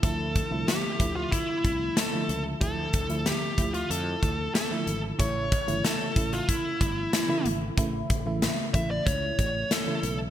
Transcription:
<<
  \new Staff \with { instrumentName = "Lead electric guitar" } { \time 4/4 \key d \minor \tempo 4 = 93 a'4 g'8. f'16 e'4 a'8. r16 | a'4 g'8. f'16 a'4 a'8. r16 | cis''4 a'8. f'16 e'4. r8 | r4. e''16 d''16 cis''4 a'8. r16 | }
  \new Staff \with { instrumentName = "FM electric piano" } { \clef bass \time 4/4 \key d \minor <d f a e'>8 r16 <d f a e'>8 r16 <d f a e'>4~ <d f a e'>16 r8 <d f a e'>8 r16 | <d f a e'>8 r16 <d f a e'>8 r16 <d f a e'>4~ <d f a e'>16 r8 <d f a e'>8 r16 | <cis e a e'>8 r16 <cis e a e'>8 r16 <cis e a e'>4~ <cis e a e'>16 r8 <cis e a e'>8 r16 | <cis e a e'>8 r16 <cis e a e'>8 r16 <cis e a e'>4~ <cis e a e'>16 r8 <cis e a e'>8 r16 | }
  \new Staff \with { instrumentName = "Fretless electric bass" } { \clef bass \time 4/4 \key d \minor d,8. c,16 r8 d,8 r8 c,8 r8 cis,8 | d,8 d,8. r16 d,8 f,8 d,8 r8 gis,,8 | a,,8. g,,16 r8 a,,8 r8 g,,8 r8 gis,,8 | a,,8 a,,8. r16 a,,8 cis,8 a,,8 r8 b,,8 | }
  \new DrumStaff \with { instrumentName = "Drums" } \drummode { \time 4/4 <hh bd>8 <hh bd>8 <hh sn>8 <hh bd>8 <hh bd>8 <hh bd>8 <hh sn>8 hh8 | <hh bd>8 <hh bd>16 hh16 <hh sn>8 <hh bd>16 hh16 hh8 <hh bd>8 <hh sn>8 hh8 | <hh bd>8 <hh bd>16 hh16 <hh sn>8 <hh bd>16 hh16 <hh bd>8 <hh bd>8 <hh sn>8 hh8 | <hh bd>8 <hh bd>8 <hh sn>8 <hh bd>8 <hh bd>8 <hh bd>8 <hh sn>8 hh8 | }
>>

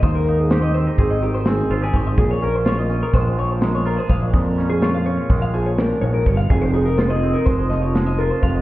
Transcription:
<<
  \new Staff \with { instrumentName = "Clean electric guitar" } { \time 9/8 \key bes \dorian \tempo 4. = 83 c''16 bes'8 aes'16 c''16 ees''16 c''8 aes'16 ees''16 g'16 c''16 aes'8 c''16 aes'16 c''16 ees''16 | aes'16 des''16 bes'16 c''16 des''16 ees''8 bes'16 c''8 des''16 c''16 bes'16 des''16 bes'16 c''16 f''16 ees''16 | c''16 bes'8 aes'16 des''16 f''16 des''8 bes'16 f''16 aes'16 des''16 bes'8 des''16 bes'16 des''16 f''16 | aes'16 c''16 aes'16 bes'16 c''16 ees''8 bes'16 c''8 ees''16 des''16 c''16 ees''16 bes'16 c''16 f''16 ees''16 | }
  \new Staff \with { instrumentName = "Clean electric guitar" } { \time 9/8 \key bes \dorian << { r8 ees'8 g'8 c'16 ees'16 c'4 c'8 f'16 g'8. | r8 des'8 f'8 des'8 aes4 aes8 f'16 aes'8. | r8 des'8 f'8 des'8 aes2~ aes8~ | aes8 ees'8 f'16 aes'16 c'16 ees'16 aes4 aes8 f'4 | } \\ { <aes, ees>2~ <aes, ees>8 ees4. aes,8 | bes,2~ bes,8 f4. bes,8 | bes,2~ bes,8 f8 bes,8 aes,8 g,8 | f,2~ f,8 f4. f,8 | } >> }
  \new Staff \with { instrumentName = "Fingered electric bass" } { \clef bass \time 9/8 \key bes \dorian ees,2 aes,,4. aes,,8 aes,,8 | bes,,2 bes,,2 bes,,8 | f,2 bes,,4. bes,,8 g,,8 | f,,2 f,,2 f,,8 | }
  \new DrumStaff \with { instrumentName = "Drums" } \drummode { \time 9/8 <hh bd>8 hh8 <hh sn>8 hh8 <hh bd>8 hh8 <hh sn>8 hh8 <hh bd>8 | <hh bd>8 hh8 <hh sn>8 hh8 <hh bd>8 hh8 <hh sn>8 hh8 <hh bd>8 | <hh bd>8 <hh sn>8 <hh sn>8 hh8 <hh bd>8 hh8 <hh sn>8 hh8 <hh bd>8 | <hh bd>8 hh8 <hh sn>8 hh8 <hh bd>8 <hh sn>8 <hh sn>8 hh8 <hh bd>8 | }
>>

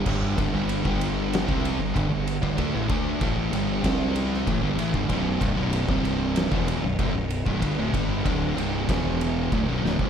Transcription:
<<
  \new Staff \with { instrumentName = "Distorted electric guitar" } { \clef bass \time 4/4 \key g \major \tempo 4 = 95 <g, d g>8 <g, d>16 <g, d g>8 <g, d g>4 <c g c'>8 <g, d>16 <g, d>16 <g, d>8 <g, d>16 | <d a>16 <a, e>16 <d a d'>8 <a, e a>8 <g, d g>8 <c g c'>4 <a, e>16 <g, d>16 <a, e>16 <g, d>16 | <b,, fis, b,>8 <c, g,>16 <b,, fis, b,>8 <c, g, c>4 <e, b, e>8 <b,, fis,>16 <b,, fis,>16 <b,, fis,>8 <c, g,>16 | <g, d>16 <d, a,>16 <g, d g>8 <d, a, d>8 <c, g, c>8 <e, b, e>4 <d, a,>16 <b,, fis,>16 <d, a,>16 <c, g,>16 | }
  \new Staff \with { instrumentName = "Distorted electric guitar" } { \clef bass \time 4/4 \key g \major <g, d g>8 <g, d>16 <g, d g>8 <g, d g>4 <c g c'>8 <g, d>16 <g, d>16 <g, d>8 <g, d>16 | <d a>16 <a, e>16 <d a d'>8 <a, e a>8 <g, d g>8 <c g c'>4 <a, e>16 <g, d>16 <a, e>16 <g, d>16 | <b,, fis, b,>8 <c, g,>16 <b,, fis, b,>8 <c, g, c>4 <e, b, e>8 <b,, fis,>16 <b,, fis,>16 <b,, fis,>8 <c, g,>16 | <g, d>16 <d, a,>16 <g, d g>8 <d, a, d>8 <c, g, c>8 <e, b, e>4 <d, a,>16 <b,, fis,>16 <d, a,>16 <c, g,>16 | }
  \new Staff \with { instrumentName = "Overdriven electric guitar" } { \clef bass \time 4/4 \key g \major <g, d g>8 <g, d>16 <g, d g>8 <g, d g>4 <c g c'>8 <g, d>16 <g, d>16 <g, d>8 <g, d>16 | <d a>16 <a, e>16 <d a d'>8 <a, e a>8 <g, d g>8 <c g c'>4 <a, e>16 <g, d>16 <a, e>16 <g, d>16 | <b,, fis, b,>8 <c, g,>16 <b,, fis, b,>8 <c, g, c>4 <e, b, e>8 <b,, fis,>16 <b,, fis,>16 <b,, fis,>8 <c, g,>16 | <g, d>16 <d, a,>16 <g, d g>8 <d, a, d>8 <c, g, c>8 <e, b, e>4 <d, a,>16 <b,, fis,>16 <d, a,>16 <c, g,>16 | }
  \new Staff \with { instrumentName = "Fingered electric bass" } { \clef bass \time 4/4 \key g \major g,,8 g,,16 g,,8 g,,4 c,8 g,,16 g,,16 g,,8 g,,16 | d,16 a,,16 d,8 a,,8 g,,8 c,4 a,,16 g,,16 a,,16 g,,16 | b,,,8 c,,16 b,,,8 c,,4 e,,8 b,,,16 b,,,16 b,,,8 c,,16 | g,,16 d,,16 g,,8 d,,8 c,,8 e,,4 d,,16 b,,,16 d,,16 c,,16 | }
  \new DrumStaff \with { instrumentName = "Drums" } \drummode { \time 4/4 <cymc bd>8 <bd cymr>8 cymr16 bd16 cymr8 <cymr sn>16 bd16 cymr8 <bd cymr>8 cymr16 bd16 | <bd cymr>8 <bd cymr>8 <bd cymr>8 cymr8 <bd cymr sn>8 cymr16 sn16 <bd cymr>8 cymr16 bd16 | <bd cymr>8 <bd cymr>8 cymr16 bd16 cymr8 <cymr sn>16 bd16 cymr8 <bd cymr>8 cymr16 bd16 | <bd cymr>8 <bd cymr>8 <bd cymr>8 cymr8 <bd cymr sn>8 cymr8 <bd cymr>8 sn16 bd16 | }
>>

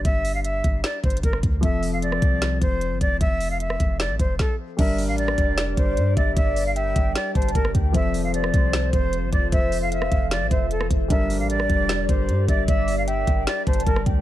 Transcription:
<<
  \new Staff \with { instrumentName = "Soft synth lead" } { \time 4/4 \key g \dorian \tempo 4 = 152 r1 | r1 | r1 | d''2.~ d''8 e''8 |
d''4 g''4. a''4 g''8 | c''2.~ c''8 d''8 | c''4 f''4. e''8 r4 | d''2.~ d''8 e''8 |
d''4 g''4. a''4 g''8 | }
  \new Staff \with { instrumentName = "Flute" } { \time 4/4 \key g \dorian e''8. f''16 e''4 d''8 c''8 bes'8 r8 | e''8. f''16 d''4. c''4 d''8 | e''8. f''16 e''4 d''8 c''8 a'8 r8 | e''8. f''16 d''4. c''4 d''8 |
e''8. f''16 e''4 d''8 c''8 bes'8 r8 | e''8. f''16 d''4. c''4 d''8 | e''8. f''16 e''4 d''8 c''8 a'8 r8 | e''8. f''16 d''4. c''4 d''8 |
e''8. f''16 e''4 d''8 c''8 bes'8 r8 | }
  \new Staff \with { instrumentName = "Ambient pad" } { \time 4/4 \key g \dorian r1 | r1 | r1 | <g g' bes' d''>1~ |
<g g' bes' d''>1 | <f f' a' c''>1~ | <f f' a' c''>1 | <g g' bes' d''>1~ |
<g g' bes' d''>1 | }
  \new Staff \with { instrumentName = "Grand piano" } { \time 4/4 \key g \dorian <g d' bes'>1 | <f c' a'>1~ | <f c' a'>1 | <g d' bes'>1~ |
<g d' bes'>1 | <f c' a'>1~ | <f c' a'>1 | <g d' bes'>1~ |
<g d' bes'>1 | }
  \new Staff \with { instrumentName = "808-style bass" } { \clef bass \time 4/4 \key g \dorian g,,4. g,,8 r8 g,,8 g,,8 d,8 | f,,4. c,4 f,,8. g,,16 f,,8 | f,,4. f,,8. a,,16 f,,8 r4 | g,,8. a,,8. f,,4 g,,8 g,8 g,,8 |
g,,4. g,,8 r8 g,,8 g,,8 d,8 | f,,4. c,4 f,,8. g,,16 f,,8 | f,,4. f,,8. a,,16 f,,4 f,,8 | g,,8. a,,8. f,,4 g,,8 g,8 g,,8 |
g,,4. g,,8 r8 g,,8 g,,8 d,8 | }
  \new DrumStaff \with { instrumentName = "Drums" } \drummode { \time 4/4 <hh bd>8 hho8 hh8 <hh bd>8 \tuplet 3/2 { <hh sn>16 r16 r16 <hh bd>16 hh16 hh16 } <hh bd>16 ss16 <hh bd>8 | <hh bd>8 hho8 hh16 ss16 <hh bd>8 <hh sn>8 <hh bd>8 hh8 <hh bd>8 | <hh bd>8 hho8 hh16 ss16 <hh bd>8 <hh sn>8 <hh bd>8 <bd sn>4 | <cymc hh bd>8 hho8 hh16 ss16 <hh bd>8 <hh sn>8 <hh bd>8 hh8 <hh bd>8 |
<hh bd>8 hho8 hh8 <hh bd>8 \tuplet 3/2 { <hh sn>16 r16 r16 <hh bd>16 hh16 hh16 } <hh bd>16 ss16 <hh bd>8 | <hh bd>8 hho8 hh16 ss16 <hh bd>8 <hh sn>8 <hh bd>8 hh8 <hh bd>8 | <hh bd>8 hho8 hh16 ss16 <hh bd>8 <hh sn>8 <hh bd>8 hh16 ss16 <hh bd>8 | <hh bd>8 hho8 hh16 ss16 <hh bd>8 <hh sn>8 <hh bd>8 hh8 <hh bd>8 |
<hh bd>8 hho8 hh8 <hh bd>8 \tuplet 3/2 { <hh sn>16 r16 r16 <hh bd>16 hh16 hh16 } <hh bd>16 ss16 <hh bd>8 | }
>>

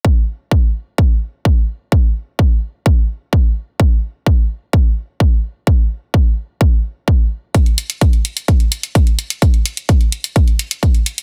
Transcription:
\new DrumStaff \with { instrumentName = "Drums" } \drummode { \time 4/4 \tempo 4 = 128 bd4 bd4 bd4 bd4 | bd4 bd4 bd4 bd4 | bd4 bd4 bd4 bd4 | bd4 bd4 bd4 bd4 |
<hh bd>16 hh16 hh16 hh16 <hh bd>16 hh16 hh16 hh16 <hh bd>16 hh16 hh16 hh16 <hh bd>16 hh16 hh16 hh16 | <hh bd>16 hh16 hh16 hh16 <hh bd>16 hh16 hh16 hh16 <hh bd>16 hh16 hh16 hh16 <hh bd>16 hh16 hh16 hh16 | }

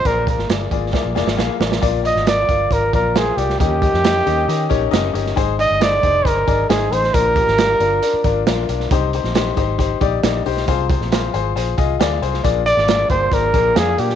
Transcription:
<<
  \new Staff \with { instrumentName = "Trumpet" } { \time 4/4 \key bes \mixolydian \tempo 4 = 136 bes'8 bes'8 r2. | r8 ees''8 d''4 bes'8 bes'8 aes'8 g'8 | g'2. r4 | r8 ees''8 d''4 bes'4 aes'8 c''8 |
bes'2. r4 | r1 | r1 | r8 d''4 c''8 bes'4 aes'8 g'8 | }
  \new Staff \with { instrumentName = "Grand piano" } { \time 4/4 \key bes \mixolydian <bes f' aes' d''>8 <bes f' aes' d''>8 <bes f' aes' d''>8 <bes f' aes' d''>8 <bes f' aes' d''>8 <bes f' aes' d''>8 <bes f' aes' f''>8 <bes f' aes' d''>8 | <f' bes' d''>8 <f' bes' d''>8 <f' bes' d''>8 <f' bes' f''>8 <f' bes' d''>8 <f' bes' d''>8 <f' bes' c''>8 <f' bes' d''>8 | <des' ees' g' bes' ees''>8 <des' ees' g' bes' ees''>8 <des' ees' g' bes' ees''>8 <des' ees' g' bes' ees''>8 <des' ees' g' bes' ees''>8 <des' ees' g' bes' des''>8 <des' ees' g' bes' ees''>8 <des' ees' g' bes' ees''>8 | <ees' aes' c''>8 <ees' aes' d''>8 <ees' aes' c''>8 <ees' aes' c''>8 <ees' aes' c''>8 <ees' aes' d''>8 <ees' aes' c''>8 <ees' aes' c''>8 |
<d' f' bes'>8 <d' f' g'>8 <d' f' g'>8 <d' f' bes'>8 <d' f' bes'>8 <d' f' bes'>8 <d' f' bes'>8 <d' f' bes'>8 | <ees' g' c''>8 <ees' g' c''>8 <ees' g' c''>8 <ees' g' c''>8 <ees' g' c''>8 <ees' g' d''>8 <ees' g' d''>8 <ees' g' c''>8 | <f' aes' c''>8 <f' aes' c''>8 <f' aes' c''>8 <f' aes' c''>8 <f' aes' c''>8 <f' aes' ees''>8 <f' aes' d''>8 <f' aes' c''>8 | <bes d' f' aes' d''>8 <bes d' f' aes' d''>8 <bes d' f' aes' d''>8 <bes d' f' aes' c''>8 <bes d' f' aes' d''>8 <bes d' f' aes' bes'>8 <bes d' f' aes' f''>8 <bes d' f' aes' d''>8 | }
  \new Staff \with { instrumentName = "Grand piano" } { \clef bass \time 4/4 \key bes \mixolydian bes,4. r2 r8 | bes,4. r2 r8 | ees4. r2 r8 | aes4. r2 r8 |
bes,4. r2 r8 | c4. r2 r8 | c4. r2 r8 | bes,4. r2 r8 | }
  \new Staff \with { instrumentName = "Fingered electric bass" } { \clef bass \time 4/4 \key bes \mixolydian bes,,8. aes,,16 g,,8 aes,,8 r16 bes,,16 f,,16 aes,,16 bes,,16 r16 a,,8 | bes,,8. aes,,8. g,,8 aes,,8 bes,,4 c,8 | ees,8. f,8. ees,8 ees8 bes,,8 ges,,8 g,,8 | aes,,8. g,,8. f,,8 g,,8 aes,,8 aes,,8 a,,8 |
bes,,8. aes,,8. g,,8 r8 aes,,8 bes,,8 ces,8 | c,8. bes,,8. aes,,4 bes,,8 bes,,8 ces,8 | c,8. bes,,8. aes,,8 bes,,8 c,8 d,8 c,8 | bes,,8. aes,,8. g,,8 aes,,8 bes,,8 f,8 bes,8 | }
  \new DrumStaff \with { instrumentName = "Drums" } \drummode { \time 4/4 <hh bd>8 <hh bd>16 sn16 <hh sn>8 <hh bd>8 <bd sn>8 sn16 sn16 sn8 sn16 sn16 | <hh bd>8 hh16 sn16 <hh sn>8 <hh bd>8 <hh bd>8 <hh bd>8 <hh sn>8 hh16 sn16 | <hh bd>8 <hh bd>16 sn16 <hh sn>8 hh8 hh8 <hh bd>8 <hh sn>8 hh16 sn16 | <hh bd>8 hh8 <hh sn>8 <hh bd>8 <hh bd>8 <hh bd>8 <hh sn>8 hh16 sn16 |
<hh bd>8 <hh bd>16 sn16 <hh sn>8 hh8 hh8 <hh bd>8 <hh sn>8 hh16 sn16 | <hh bd>8 hh16 sn16 <hh sn>8 <hh bd>8 <hh bd>8 <hh bd>8 <hh sn>8 hho16 sn16 | <hh bd>8 <hh bd>16 sn16 <hh sn>8 hh8 hh8 <hh bd>8 <hh sn>8 hh16 sn16 | <hh bd>8 hh16 sn16 <hh sn>8 <hh bd>8 <hh bd>8 <hh bd>8 <hh sn>8 hh16 sn16 | }
>>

